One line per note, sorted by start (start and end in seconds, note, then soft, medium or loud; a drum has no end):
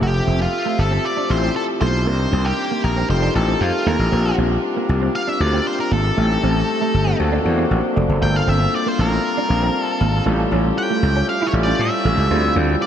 0.01 0.20 F1 loud
0.01 2.04 C3 medium
0.01 2.04 F3 medium
0.01 2.05 A3 medium
0.01 0.12 A3 medium
0.01 0.98 C4 medium
0.01 0.99 F4 medium
0.01 0.99 G4 medium
0.01 0.41 G4 loud
0.01 0.99 A4 medium
0.01 0.99 E5 medium
0.01 2.05 E5 medium
0.27 0.46 F1 medium
0.27 0.37 C4 medium
0.40 0.81 F4 medium
0.40 muted clean electric guitar stroke soft
0.65 0.76 A3 medium
0.78 0.97 G1 medium
0.78 1.05 A4 medium
0.78 muted clean electric guitar stroke soft
0.91 1.01 C4 medium
1.05 1.31 D5 loud
1.17 1.27 D4 medium
1.30 1.49 A1 medium
1.30 2.03 C4 medium
1.30 2.03 E4 medium
1.30 2.03 F4 medium
1.30 2.03 G4 medium
1.30 2.03 C5 medium
1.30 1.54 C5 medium
1.30 muted clean electric guitar stroke soft
1.43 1.53 C4 medium
1.56 1.63 A4 medium
1.81 2.07 B1 medium
1.81 1.91 A3 medium
1.81 2.47 C5 medium
2.06 2.26 C2 loud
2.06 3.08 C3 medium
2.06 3.08 D#3 medium
2.06 7.15 G3 medium
2.06 3.08 A#3 medium
2.06 2.17 A#3 medium
2.06 3.04 C4 medium
2.06 3.04 D4 medium
2.06 3.04 D#4 medium
2.06 3.04 G4 medium
2.06 3.04 A#4 medium
2.32 2.51 C2 loud
2.32 2.42 C4 medium
2.45 2.81 G4 medium
2.45 muted clean electric guitar stroke soft
2.71 2.81 A#3 medium
2.84 3.03 A#1 medium
2.84 3.10 A#4 medium
2.84 muted clean electric guitar stroke soft
2.96 3.07 C4 medium
3.09 3.28 F1 medium
3.09 4.11 D#3 medium
3.09 4.11 A3 medium
3.09 3.33 C4 medium
3.09 3.34 D#4 medium
3.09 4.11 F4 medium
3.09 3.34 F4 medium
3.09 3.34 G4 medium
3.09 3.34 A4 medium
3.09 3.35 C5 medium
3.22 3.32 D4 medium
3.35 3.54 A1 medium
3.35 4.08 C4 medium
3.35 4.08 D#4 medium
3.35 4.08 F4 medium
3.35 4.08 G4 medium
3.35 3.62 A4 medium
3.35 4.08 A4 medium
3.35 muted clean electric guitar stroke soft
3.48 3.58 C4 medium
3.61 3.70 F2 loud
3.61 3.87 F4 medium
3.86 3.96 D#2 medium
3.86 3.97 A3 medium
3.86 4.35 A#4 medium
3.99 4.09 A1 medium
4.11 4.31 A#1 loud
4.11 10.22 C3 medium
4.11 6.00 A#3 medium
4.11 4.22 A#3 medium
4.11 5.09 C4 medium
4.11 5.09 D4 medium
4.11 6.00 D4 medium
4.11 5.09 F4 medium
4.11 5.09 G4 medium
4.11 5.09 A#4 medium
4.38 4.57 A#1 medium
4.38 4.48 C4 medium
4.51 muted clean electric guitar stroke soft
4.76 4.86 A#3 medium
4.89 5.08 C2 loud
4.89 muted clean electric guitar stroke soft
5.02 5.12 C4 medium
5.15 5.29 F5 loud
5.27 5.38 D4 medium
5.27 5.41 E5 loud
5.40 5.59 D2 medium
5.40 6.13 C4 medium
5.40 6.13 D4 medium
5.40 6.13 F4 medium
5.40 6.13 G4 medium
5.40 6.14 A#4 medium
5.40 5.67 D5 medium
5.40 muted clean electric guitar stroke soft
5.53 5.63 C4 medium
5.67 5.80 C5 loud
5.80 5.93 A#4 medium
5.91 6.10 G#1 medium
5.91 6.02 A#3 medium
5.91 7.16 A4 medium
6.17 6.36 A1 loud
6.17 7.14 A3 medium
6.17 6.27 A3 medium
6.17 7.19 A3 medium
6.17 7.14 C4 medium
6.17 7.19 D#4 medium
6.17 7.14 D#4 medium
6.17 7.14 G4 medium
6.17 7.15 A4 medium
6.43 6.62 A1 medium
6.43 6.53 C4 medium
6.56 muted clean electric guitar stroke soft
6.81 6.91 A3 medium
6.94 7.13 G1 medium
6.94 muted clean electric guitar stroke soft
7.07 7.17 C4 medium
7.19 7.38 D2 loud
7.19 8.21 F#3 medium
7.19 7.43 A#3 medium
7.19 8.20 A#3 medium
7.19 7.43 C4 medium
7.19 7.43 D4 medium
7.19 8.21 D4 medium
7.19 7.44 F#4 medium
7.19 7.44 A4 medium
7.32 7.42 D4 medium
7.44 7.64 E2 medium
7.44 8.17 A#3 medium
7.44 8.18 C4 medium
7.44 8.18 D4 medium
7.44 8.18 F#4 medium
7.44 8.18 C5 medium
7.44 7.69 A5 medium
7.44 muted clean electric guitar stroke soft
7.58 7.68 C4 medium
7.70 7.80 A1 medium
7.70 7.94 F#5 medium
7.96 8.06 F1 medium
7.96 8.06 A3 medium
7.96 8.20 D5 medium
8.09 8.18 F#1 medium
8.21 8.41 G1 medium
8.21 10.24 G3 medium
8.21 8.32 A3 medium
8.21 9.19 A#3 medium
8.21 10.24 A#3 medium
8.21 9.19 C4 medium
8.21 9.19 D4 medium
8.21 10.24 F4 medium
8.21 9.19 F4 medium
8.21 8.28 G#4 medium
8.21 8.35 G5 loud
8.29 9.22 A4 medium
8.36 8.49 F5 medium
8.47 8.66 G1 medium
8.47 8.58 C4 medium
8.47 8.75 E5 loud
8.61 muted clean electric guitar stroke soft
8.75 8.88 D5 medium
8.86 8.96 A#3 medium
8.86 9.00 C5 medium
8.99 9.17 A1 loud
8.99 9.81 A#4 medium
8.99 muted clean electric guitar stroke soft
9.11 9.21 C4 medium
9.37 9.47 D4 medium
9.48 9.68 A#1 loud
9.48 10.22 A#3 medium
9.48 10.22 C4 medium
9.48 10.22 D4 medium
9.48 10.22 F4 medium
9.48 10.22 A5 medium
9.48 muted clean electric guitar stroke soft
9.63 9.73 C4 medium
9.81 10.23 A4 medium
10.01 10.19 G#1 loud
10.01 10.11 A#3 medium
10.26 10.45 A1 loud
10.26 12.87 F3 medium
10.26 11.23 G3 medium
10.26 12.28 A3 medium
10.26 10.36 A3 medium
10.26 10.32 C4 medium
10.26 12.29 C#4 medium
10.26 11.23 E4 medium
10.26 11.23 F4 medium
10.26 12.29 G4 medium
10.26 11.23 A4 loud
10.32 11.26 C#4 medium
10.52 10.70 A1 medium
10.52 10.62 C#4 medium
10.65 muted clean electric guitar stroke soft
10.78 11.25 G5 loud
10.90 11.00 A3 medium
11.03 11.21 C#2 loud
11.03 muted clean electric guitar stroke soft
11.16 11.26 C#4 medium
11.29 11.46 F5 medium
11.42 11.52 E4 medium
11.47 11.52 C#5 medium
11.53 11.72 A1 medium
11.53 12.26 G3 medium
11.53 12.26 C#4 medium
11.53 12.27 E4 medium
11.53 12.27 F4 medium
11.53 12.27 A4 medium
11.53 muted clean electric guitar stroke soft
11.63 11.77 C#4 medium
11.63 11.80 D5 medium
11.79 11.89 A2 medium
11.79 12.53 E5 medium
12.05 12.14 A1 medium
12.05 12.15 A3 medium
12.17 12.27 C#2 medium
12.30 12.49 D2 loud
12.30 12.87 G3 medium
12.30 12.41 A3 medium
12.30 12.87 C4 medium
12.30 12.87 D4 medium
12.30 12.87 E4 medium
12.30 12.87 F4 medium
12.30 12.87 G4 medium
12.30 12.37 G#4 medium
12.37 12.87 A4 medium
12.56 12.75 D2 medium
12.56 12.66 C4 medium
12.69 muted clean electric guitar stroke soft
12.82 12.87 D5 medium